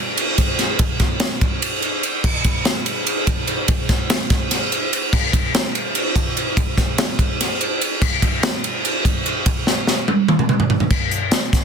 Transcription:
0.17 ride
0.38 kick, ride
0.59 snare, ride
0.79 kick, ride
1.00 kick, snare, ride
1.20 snare, ride
1.41 kick, ride
1.62 ride
1.82 ride
2.03 ride
2.24 kick, crash
2.44 kick, ride
2.65 snare, ride
2.86 ride
3.07 ride
3.27 kick, ride
3.47 ride
3.68 kick, ride
3.89 kick, snare, ride
4.10 snare, ride
4.30 kick, snare, ride
4.51 snare, ride
4.72 ride
4.93 ride
5.13 kick, crash
5.33 kick, ride
5.54 snare, ride
5.75 ride
5.95 ride
6.16 kick, ride
6.37 ride
6.57 kick, ride
6.78 kick, snare, ride
6.98 snare, ride
7.19 kick, ride
7.41 snare, ride
7.61 ride
7.81 ride
8.02 kick, crash
8.22 kick, ride
8.43 snare, ride
8.64 ride
8.85 ride
9.05 kick, ride
9.26 ride
9.46 kick, ride
9.67 snare
9.87 snare
10.08 high tom
10.28 mid tom
10.39 mid tom
10.49 mid tom
10.60 floor tom
10.70 floor tom
10.80 floor tom
10.90 kick, crash
11.11 closed hi-hat
11.31 snare, closed hi-hat
11.53 kick, snare, closed hi-hat

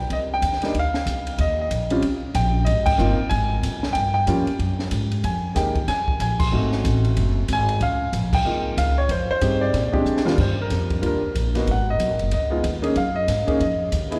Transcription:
Already playing: G5
0.10 C2 D#5, kick, ride
0.34 G5
0.42 D#2, kick, hi-hat pedal, ride
0.53 snare
0.62 G3 A#3 D4 D#4, snare, ride
0.74 D2, kick, ride
0.79 F5
0.94 snare
1.06 C2, kick, hi-hat pedal, ride
1.27 ride
1.38 D#2 D#5, kick, ride
1.61 D#5
1.70 A#1, kick, hi-hat pedal, ride
1.90 G3 C4 C#4 F4, ride
2.02 C2, kick, ride
2.34 A#1 G5, kick, hi-hat pedal, ride
2.65 G#1 D#5, kick, ride
2.86 G5, kick, crash
2.98 G1 A#3 C4 D#4 F4, hi-hat pedal
3.19 muted upright bass stroke
3.29 G#1 G#5, kick, ride
3.63 C2, kick, hi-hat pedal, ride
3.83 snare
3.93 G2 G5, kick, ride
4.14 G5
4.27 F2 G3 A#3 C#4 F4, kick, hi-hat pedal, ride
4.46 muted upright bass stroke, ride
4.59 F#2, kick, ride
4.79 snare
4.91 G#2, kick, hi-hat pedal, ride
5.12 ride
5.24 F2 G#5, kick, ride
5.55 D#2 G#3 A#3 D#4 G4 G5, kick, snare, hi-hat pedal, ride
5.75 kick, ride
5.88 C2 G#5, kick, snare, ride
6.08 kick
6.20 A#1 G#5, kick, hi-hat pedal, ride
6.40 C6, kick, crash
6.52 G#1 A3 C4 D#4 F#4
6.72 snare
6.84 A1, kick, hi-hat pedal, ride
7.05 ride
7.17 F#1, kick, ride
7.48 G#1, kick, hi-hat pedal, ride
7.53 G#5
7.69 ride
7.80 C#2 F5, kick, ride
8.13 A#1, kick, hi-hat pedal, ride
8.33 G5, kick, crash
8.45 C2 G#3 A#3 D#4 F4
8.77 C#2 F5, kick, hi-hat pedal, ride
8.98 C#5
9.09 F2 C5, kick, ride
9.30 C5, muted upright bass stroke
9.41 G2 C4 D#4 G4 G#4, kick, hi-hat pedal, ride
9.61 D5
9.74 A#2, kick, snare, ride
9.92 G#3 C4 D4 G4, kick
10.05 D3, hi-hat pedal
10.17 snare
10.25 D#2 G3 A#3 D4 F4, snare
10.38 G2 C5, kick, crash
10.62 A#4
10.70 F2, kick, snare, hi-hat pedal, ride
10.90 kick, ride
11.01 D#2 G3 A#3 D4 F4, kick, ride
11.06 A#4
11.22 muted upright bass stroke
11.35 A#1, kick, hi-hat pedal, ride
11.55 A#3 B3 D#4 F#4, snare, ride
11.67 G#1, kick, ride
11.71 F#5
11.90 D#5
11.99 B1, kick, hi-hat pedal, ride
12.11 G#1
12.19 F#1, ride
12.31 C#2 D#5, kick, ride
12.50 G#3 B3 D#4 F4
12.63 D#2, kick, hi-hat pedal, ride
12.82 A#3 C#4 D#4 G#4, ride
12.96 F#2 F5, kick, ride
13.16 D#5
13.28 G#2, kick, snare, hi-hat pedal, ride
13.47 A#3 C#4 D#4 G#4, muted upright bass stroke, kick, ride
13.60 F2 D#5, kick, ride
13.92 D#2, kick, hi-hat pedal, ride
14.10 B3 D#4 E4 G#4, ride

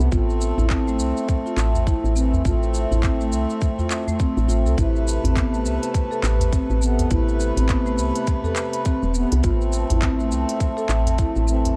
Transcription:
Already playing: A5
0.00 shaker
0.12 A1 A3 C4 F4 E5, kick, shaker
0.30 shaker
0.41 shaker
0.58 A1 E4, udu, shaker
0.70 C4, kick, clap, shaker
0.88 A3, shaker
0.99 C2, shaker
1.17 shaker
1.29 kick, shaker
1.46 F4, shaker
1.57 A1, clap, shaker
1.75 udu, shaker
1.87 E4, kick, shaker
2.04 A1, shaker
2.14 E3 A3 C4, shaker
2.34 udu, shaker
2.45 A1 A3 C4 F4, kick, shaker
2.63 shaker
2.74 shaker
2.91 A1 E4, udu, shaker
3.03 C4, kick, clap, shaker
3.21 A3, shaker
3.32 C2, shaker
3.50 shaker
3.61 kick, shaker
3.79 F4, udu, shaker
3.91 clap, shaker
4.07 A3 C4, udu, shaker
4.20 C4, kick, shaker
4.37 A1, shaker
4.48 A1 F4, shaker
4.66 C2 A4, shaker
4.76 A1 C3 A3 E4 B4 A5, kick, closed hi-hat, shaker
4.96 shaker
5.08 shaker
5.24 A1 C4, closed hi-hat, udu, shaker
5.36 B3, kick, clap, closed hi-hat, shaker
5.53 A3, shaker
5.65 C2, shaker
5.83 closed hi-hat, shaker
5.94 kick, closed hi-hat, shaker
6.11 A4, shaker
6.23 A1, clap, shaker
6.40 closed hi-hat, udu, shaker
6.52 C4, kick, closed hi-hat, shaker
6.70 A1, shaker
6.81 C3 A3 B3, shaker
6.99 closed hi-hat, udu, shaker
7.09 A1 C3 A3 E4 B4 B5, kick, closed hi-hat, shaker
7.29 shaker
7.40 shaker
7.57 A1 C4, closed hi-hat, shaker
7.68 B3, kick, clap, closed hi-hat, shaker
7.86 A3, shaker
7.98 C2, shaker
8.15 closed hi-hat, shaker
8.27 kick, closed hi-hat, shaker
8.44 A4, udu, shaker
8.56 clap, shaker
8.73 closed hi-hat, shaker
8.85 C4, kick, closed hi-hat, shaker
9.03 E1, shaker
9.13 C3 A3 B3, shaker
9.32 C2, closed hi-hat, shaker
9.43 A1 A3 C4 F4 E5 A5, kick, closed hi-hat, shaker
9.61 shaker
9.73 shaker
9.90 A1 E4, closed hi-hat, udu, shaker
10.02 C4, kick, clap, closed hi-hat, shaker
10.19 A3, shaker
10.31 C2, shaker
10.49 closed hi-hat, shaker
10.60 kick, closed hi-hat, shaker
10.77 A4, shaker
10.89 A1, clap, shaker
11.06 closed hi-hat, udu, shaker
11.18 E4, kick, closed hi-hat, shaker
11.36 A1, shaker
11.46 E3 A3 C4, shaker
11.65 closed hi-hat, udu, shaker

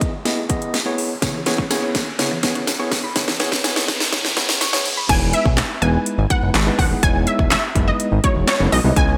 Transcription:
Already playing: B3 E4 G#4 D#5, downlifter, riser
0.01 kick, closed hi-hat
0.25 B3 E4 G#4 D#5, snare, closed hi-hat
0.49 B3 E4 G#4 D#5, kick, closed hi-hat
0.62 closed hi-hat
0.74 snare, closed hi-hat
0.86 B3 E4 G#4 C#5
0.98 open hi-hat
1.22 C#3 B3 E4 G#4 C#5, kick, snare, closed hi-hat, tambourine
1.34 E3
1.46 B3 E4 G#4 C#5, snare, closed hi-hat, tambourine
1.58 C#4, kick
1.70 B3 E4 G#4 C#5, snare, closed hi-hat, tambourine
1.83 C#5
1.95 kick, snare, closed hi-hat, tambourine
2.19 C#3 B3 E4 G#4 C#5, snare, closed hi-hat, tambourine
2.31 E3
2.43 B3 E4 G#4 C#5, kick, snare, closed hi-hat
2.55 C#4, closed hi-hat
2.67 snare, closed hi-hat, tambourine
2.79 B3 E4 G#4 C#5
2.92 kick, snare, open hi-hat, tambourine
3.04 B5
3.16 C#3 B3 E4 G#4 C#5, kick, snare, closed hi-hat, tambourine
3.28 E3, snare
3.40 B3 E4 G#4 C#5, snare, closed hi-hat, tambourine
3.52 C#4, kick, snare
3.64 B3 E4 G#4 C#5, snare, closed hi-hat, tambourine
3.76 C#5, snare
3.88 kick, snare, closed hi-hat, tambourine
4.00 snare
4.12 C#3 B3 E4 G#4 C#5, kick, snare, closed hi-hat, tambourine
4.25 E3, snare
4.37 B3 E4 G#4 C#5, kick, snare, closed hi-hat, tambourine
4.49 C#4, snare
4.61 C#6, snare, closed hi-hat, tambourine
4.73 B3 E4 G#4 C#5, snare
4.85 open hi-hat, tambourine
4.97 B5
5.09 E1 G#3 B3 D#4 E4 B4 G#5, kick, closed hi-hat, crash
5.33 E5, closed hi-hat
5.46 B1, kick
5.57 snare, clap, closed hi-hat
5.82 E1 G#3 B3 D#4 E4 B4 G#5, closed hi-hat
6.06 closed hi-hat
6.18 G#1
6.30 G#3 B3 D#4 E4 B4 F#5, kick, closed hi-hat
6.42 F#1
6.54 G#1, snare, clap, closed hi-hat
6.66 G#3 B3 D#4 E4 B4
6.79 D#1 F#5, kick, open hi-hat
6.91 G#3 B3 D#4 E4 G#4
7.03 E1 G#3 B3 D#4 E4 C#5 G#5, kick, closed hi-hat
7.27 E5, closed hi-hat
7.39 E1, kick
7.50 E5, snare, clap, closed hi-hat
7.75 F#1 G#3 B3 D#4 E4 B4, kick, closed hi-hat
7.88 D#5
8.00 closed hi-hat
8.12 G#1
8.24 G#3 B3 D#4 E4 F#4 C#5, kick, closed hi-hat
8.36 E1
8.48 C#5, snare, clap, closed hi-hat
8.60 F#1 G#3 B3 D#4 E4 B4
8.72 B1 D#5, open hi-hat
8.84 C2 G#3 B3 D#4 E4 B4
8.96 C#2 G#3 B3 C#4 E4 B4 G#5, kick, closed hi-hat

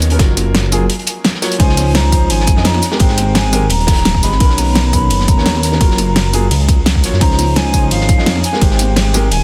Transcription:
Already playing: D#2
0.02 open hi-hat, tambourine
0.10 D#3 B3 C#4 A#4, closed hi-hat
0.18 F#1 F#3 A#3 F4 A#4, kick, snare, closed hi-hat
0.37 snare, closed hi-hat, tambourine
0.55 snare, closed hi-hat
0.71 F#3 A#3 F4 G#4, snare, closed hi-hat, open hi-hat, tambourine
0.90 closed hi-hat
0.99 closed hi-hat
1.07 closed hi-hat, tambourine
1.24 snare, closed hi-hat
1.34 snare
1.41 F#3 A#3 F4 C#5, snare, closed hi-hat, open hi-hat, tambourine
1.52 closed hi-hat, tambourine
1.58 C#2 F3 C#4 D#4 C5 G#5, kick, closed hi-hat, ride bell
1.69 snare
1.77 snare, closed hi-hat, open hi-hat, tambourine
1.95 A#5, snare, closed hi-hat, ride bell
2.11 F3 C#4 D#4 C5, kick, closed hi-hat, open hi-hat, tambourine
2.30 G#1 G#5, closed hi-hat, ride bell
2.40 snare
2.47 kick, closed hi-hat, tambourine
2.56 F2 F3 C#4 D#4 D#5, snare
2.65 A#5, snare, closed hi-hat, ride bell
2.74 snare
2.82 snare, closed hi-hat, open hi-hat, tambourine
2.91 G#3 C4 G4 A#4, snare
2.99 G#1 G#3 C4 G4 C5 G5, kick, closed hi-hat, ride bell
3.08 snare
3.17 snare, closed hi-hat, tambourine
3.35 G#5, snare, closed hi-hat, ride bell
3.52 G#3 C4 G4 A#4, snare, closed hi-hat, open hi-hat, tambourine
3.70 D#1 A#5, closed hi-hat, ride bell
3.80 closed hi-hat
3.87 kick, snare, closed hi-hat, tambourine
3.92 snare, closed hi-hat
3.96 snare, closed hi-hat
4.05 D#1, snare, closed hi-hat, ride bell
4.15 kick, snare
4.22 G#1 G#3 C4 G4 D#5 B5, snare, closed hi-hat, open hi-hat, tambourine
4.32 snare
4.39 B1 D#3 B3 C#4 A#4, kick, closed hi-hat, ride bell
4.49 snare
4.58 A#5, snare, closed hi-hat, open hi-hat, tambourine
4.75 snare, closed hi-hat, ride bell
4.92 D#3 A#3 B3 C#4 B5, kick, closed hi-hat, open hi-hat, tambourine
5.10 F#1, closed hi-hat, ride bell
5.20 snare
5.28 A#5, kick, closed hi-hat, tambourine
5.37 D#2 D#3 B3 C#4 C#5, snare
5.46 snare, closed hi-hat, ride bell
5.55 snare
5.63 A#5, snare, closed hi-hat, open hi-hat, tambourine
5.72 D#3 B3 C#4 A#4, snare
5.80 F#1 F#3 A#3 F4 A#4, kick, closed hi-hat, ride bell
5.91 snare
5.98 snare, closed hi-hat, tambourine
6.16 snare, closed hi-hat, ride bell
6.33 F#3 A#3 F4 G#4, snare, closed hi-hat, open hi-hat, tambourine
6.51 C#2, closed hi-hat, ride bell
6.60 closed hi-hat
6.68 kick, closed hi-hat, tambourine
6.86 snare, closed hi-hat, ride bell
6.95 kick, snare
7.03 G#1 F#3 A#3 F4 C#5, snare, closed hi-hat, open hi-hat, tambourine
7.13 F#2, snare
7.20 C#2 F3 C#4 D#4 C5 A#5, kick, closed hi-hat, ride bell
7.31 snare
7.38 snare, closed hi-hat, open hi-hat, tambourine
7.56 G#5, snare, closed hi-hat, ride bell
7.73 F3 C#4 D#4 C5, kick, closed hi-hat, open hi-hat, tambourine
7.91 G#1 F5, closed hi-hat, ride bell
8.00 snare
8.09 kick, closed hi-hat, tambourine
8.18 F2 F3 C#4 D#4 D#5, snare
8.26 snare, closed hi-hat, ride bell
8.36 snare
8.44 G#5, snare, closed hi-hat, open hi-hat, tambourine
8.53 G#3 C4 G4 A#4, snare
8.60 G#1 G#3 C4 G4 C5 G5, kick, closed hi-hat, ride bell
8.71 snare
8.79 snare, closed hi-hat, tambourine
8.96 snare, closed hi-hat, ride bell
9.14 G#3 C4 G4 A#4, snare, closed hi-hat, open hi-hat, tambourine
9.31 D#1 G#5, closed hi-hat, ride bell

